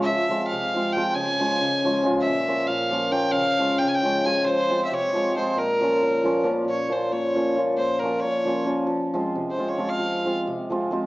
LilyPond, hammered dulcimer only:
\new Staff \with { instrumentName = "Hammered dulcimer" } { \time 5/8 \tempo 4 = 136 << { r8 <f aes c' f'>8 r8 <f aes c' f'>8 <f aes c' f'>8 | r8 <f aes des' f'>8 r8 <f aes des' f'>8 <f aes des' f'>8 | r8 <f bes des' f'>8 r8 <f bes des' f'>8 <f bes des' f'>8 | r8 <f aes des' f'>8 r8 <f aes des' f'>8 <f aes des' f'>8 |
r8 <f aes c' f'>8 r8 <f aes c' f'>8 <f aes c' f'>8 | r8 <f bes des' f'>8 r8 <f bes des' f'>8 <f bes des' f'>8 | r8 <f bes des' f'>8 r8 <f bes des' f'>8 <f bes des' f'>8 | r8 <f bes des' f'>8 r8 <f bes des' f'>8 <f bes des' f'>8 |
r8 <f aes c' f'>8 r8 <f aes c' f'>8 <f aes c' f'>8 | r8 <f aes c' f'>8 r8 <f aes c' f'>8 <f aes c' f'>8 | } \\ { f4 c4 r8 | des4 des4 r8 | bes,4 bes,4 r8 | des4 des4 r8 |
f4 c4 r8 | bes,4 bes,4 r8 | bes,4 bes,4 r8 | bes,4 bes,4 r8 |
f4 c4 r8 | f4 c4 r8 | } >> }